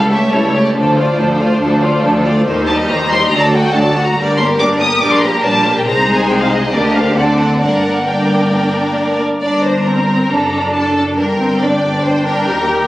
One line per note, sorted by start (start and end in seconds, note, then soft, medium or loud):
0.00 0.27 C#2 medium
0.00 0.27 C#2 soft
0.10 0.32 A3 soft
0.10 0.32 C#4 soft
0.10 0.32 G4 soft
0.10 0.32 C#5 soft
0.10 0.32 E5 medium
0.31 0.70 C#2 medium
0.31 0.70 C#2 soft
0.31 0.53 G3 soft
0.31 0.54 E4 soft
0.31 0.54 A4 soft
0.31 0.64 C#5 medium
0.53 0.75 A3 soft
0.53 0.75 C#4 soft
0.53 0.75 G4 soft
0.53 0.75 C#5 soft
0.65 0.69 D5 medium
0.75 1.13 D2 medium
0.75 0.95 F3 soft
0.75 0.95 D4 soft
0.75 0.95 A4 soft
0.75 2.43 C5 medium
0.96 1.18 A3 soft
0.96 1.18 F4 soft
0.96 1.18 D5 soft
1.17 1.55 D2 medium
1.17 1.56 D2 soft
1.17 1.39 F3 soft
1.17 1.39 D4 soft
1.17 1.39 A4 soft
1.39 1.60 A3 soft
1.39 1.60 F4 soft
1.39 1.61 F4 soft
1.39 1.61 D5 soft
1.60 1.98 D2 medium
1.60 1.80 F3 soft
1.60 1.80 D4 soft
1.60 1.81 A4 soft
1.82 2.03 A3 soft
1.82 2.03 F4 soft
1.82 2.03 D5 soft
2.02 2.40 D2 medium
2.02 2.41 D2 medium
2.02 2.24 F3 soft
2.02 2.24 D4 soft
2.02 2.24 A4 soft
2.23 2.46 A3 soft
2.23 2.45 F4 soft
2.23 2.46 F4 soft
2.23 2.45 D5 soft
2.45 2.84 D#2 medium
2.45 2.66 D#3 soft
2.45 2.65 D#4 soft
2.45 2.66 G4 soft
2.45 2.65 C5 soft
2.67 2.89 G3 soft
2.67 2.89 D#4 soft
2.67 2.89 G4 soft
2.67 2.89 D#5 soft
2.67 2.75 A5 medium
2.88 3.26 D#2 medium
2.88 3.27 D#2 medium
2.88 3.10 D#3 soft
2.88 3.10 D#4 soft
2.88 3.10 G4 soft
2.88 3.10 C5 soft
2.88 3.09 A#5 medium
3.10 3.32 G3 soft
3.10 3.32 D#4 soft
3.10 3.32 G4 soft
3.10 3.32 D#5 soft
3.10 3.31 C6 medium
3.30 3.69 D2 medium
3.30 3.51 F#3 medium
3.30 3.51 D4 soft
3.30 3.52 A4 soft
3.30 3.52 D5 soft
3.30 3.41 A#5 medium
3.42 3.53 A5 medium
3.52 3.74 A3 soft
3.52 3.74 F#4 soft
3.52 3.75 F#4 soft
3.52 3.75 F#5 soft
3.52 3.73 G5 medium
3.73 4.12 D2 medium
3.73 3.95 F#3 soft
3.73 3.95 D4 medium
3.73 3.96 A4 soft
3.73 3.95 D5 soft
3.73 4.06 A5 medium
3.96 4.17 A3 soft
3.96 4.17 F#4 soft
3.96 4.17 F#5 soft
4.06 4.17 A#5 medium
4.17 4.54 G1 medium
4.17 4.54 G2 medium
4.17 4.37 G3 medium
4.17 4.37 D4 soft
4.17 4.38 A#4 soft
4.17 4.37 D5 medium
4.38 4.59 A#3 soft
4.38 4.60 G4 soft
4.38 4.59 A#4 soft
4.38 4.46 C6 medium
4.59 4.97 G1 medium
4.59 4.96 G2 medium
4.59 4.80 G3 soft
4.59 4.80 D4 soft
4.59 4.79 A#4 soft
4.59 4.80 D5 soft
4.59 4.68 D6 medium
4.80 5.01 A#3 soft
4.80 5.01 G4 soft
4.80 5.00 A#4 soft
4.80 5.01 D#6 medium
5.01 5.39 A#1 medium
5.01 5.38 A#2 medium
5.01 5.21 G3 soft
5.01 5.21 D4 soft
5.01 5.21 A#4 soft
5.01 5.21 D5 soft
5.01 5.12 D6 medium
5.12 5.22 C6 medium
5.21 5.44 A#3 soft
5.21 5.44 G4 soft
5.21 5.42 A#4 soft
5.21 5.43 A#5 medium
5.43 5.82 A#1 medium
5.43 5.81 A#2 medium
5.43 5.65 G3 medium
5.43 5.65 D4 soft
5.43 5.65 A#4 soft
5.43 5.65 D5 soft
5.43 5.75 A5 medium
5.65 5.86 A#3 soft
5.65 5.87 G4 soft
5.65 5.87 A#4 soft
5.77 5.87 G5 medium
5.85 6.68 C2 medium
5.85 6.68 C3 medium
5.85 6.68 G#3 medium
5.85 6.68 D#4 soft
5.85 6.68 G#4 soft
5.85 6.68 C5 medium
5.85 6.17 A#5 medium
6.18 6.29 G#5 medium
6.28 6.33 G5 medium
6.39 6.50 F5 medium
6.49 6.72 D#5 medium
6.71 7.16 D2 soft
6.71 7.15 D3 soft
6.71 7.16 A#3 soft
6.71 7.15 D4 soft
6.71 7.16 G4 soft
6.71 6.94 A#4 soft
6.71 6.83 D5 medium
6.83 6.94 D#5 medium
6.93 7.16 C5 soft
6.93 7.15 F5 medium
7.16 7.61 D2 soft
7.16 7.60 D3 soft
7.16 7.61 C4 soft
7.16 7.60 D4 soft
7.16 7.61 A4 soft
7.16 7.59 D5 soft
7.16 7.27 F#5 medium
7.28 7.38 D5 soft
7.37 7.60 F#5 medium
7.60 9.22 G1 soft
7.60 9.22 G2 soft
7.60 8.06 A#3 soft
7.60 8.06 D4 soft
7.60 8.06 A#4 soft
7.60 8.06 D5 soft
7.60 8.06 F#5 medium
8.07 9.20 A#3 soft
8.07 9.20 D4 soft
8.07 9.20 A#4 soft
8.07 9.20 D5 soft
8.07 8.97 G5 soft
9.41 10.26 G1 soft
9.41 10.26 G2 medium
9.41 9.83 D4 soft
9.41 9.62 D5 soft
9.41 10.70 A#5 soft
9.64 9.86 C5 soft
9.85 10.30 C4 soft
9.85 10.29 A#4 soft
10.30 11.16 F#1 soft
10.30 11.15 F#2 soft
10.30 11.16 D4 soft
10.30 10.73 A4 soft
10.74 11.17 A4 soft
10.74 10.94 A5 soft
10.95 11.03 A5 soft
11.17 12.48 G1 soft
11.17 12.48 G2 medium
11.17 11.25 D4 soft
11.17 11.60 A#4 soft
11.17 12.87 G5 soft
11.39 11.60 C4 soft
11.60 12.03 D4 soft
11.60 12.04 D5 soft
12.02 12.47 D4 soft
12.02 12.25 C5 medium
12.26 12.87 A#4 medium
12.47 12.87 D#2 medium
12.47 12.87 D#2 soft
12.47 12.87 G4 soft